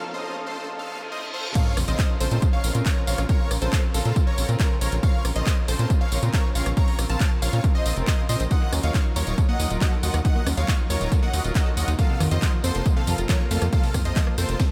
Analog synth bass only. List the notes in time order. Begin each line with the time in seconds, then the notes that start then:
1.77 A#1
1.88 A#1
2.21 A#1
2.31 A#2
2.64 A#1
2.75 A#2
3.07 A#1
3.18 A#1
3.51 A#1
3.62 A#1
3.94 A#1
4.05 A#2
4.38 A#1
4.49 A#2
4.81 A#1
4.92 A#1
5.25 A#1
5.36 A#1
5.68 A#1
5.79 A#2
6.12 A#1
6.23 A#2
6.55 A#1
6.66 A#1
6.99 A#1
7.10 A#1
7.42 A#1
7.53 A#2
7.86 A#1
7.97 F1
8.29 A#2
8.40 A#1
8.73 D#2
8.84 D#2
9.16 D#2
9.27 D#1
9.60 D#2
9.70 D#1
10.03 D#2
10.14 D#2
10.47 D#2
10.57 D#2
10.90 D#2
11.01 D#1
11.34 D#2
11.44 D#1
11.77 D#2
11.88 D#2
12.21 F2
12.31 F2
12.64 F2
12.75 F1
13.07 F2
13.18 F1
13.51 F2
13.62 F2
13.94 F2
14.05 F2
14.38 F2
14.49 F1